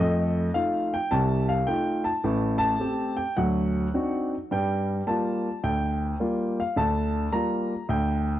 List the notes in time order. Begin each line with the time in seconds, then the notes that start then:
0.00 F2 A3 D#5
0.54 A3 D#4 F4 F5
0.94 G5
1.11 C2 C3 A5
1.49 F5
1.67 A3 D#4 F4 G5
2.04 A5
2.24 A1 A2
2.58 A5
2.80 A3 C4 G4
3.17 G5
3.37 D2 F#3 F#5
3.94 C4 D4 D#4 F#4
4.51 G2 G3 G5
5.07 G3 A#3 F4 A5
5.63 D2 G5
6.20 G3 A#3 F4
6.60 F5
6.76 D2 D3 A5
7.32 G3 A#3 F4 A#5
7.89 D2 G5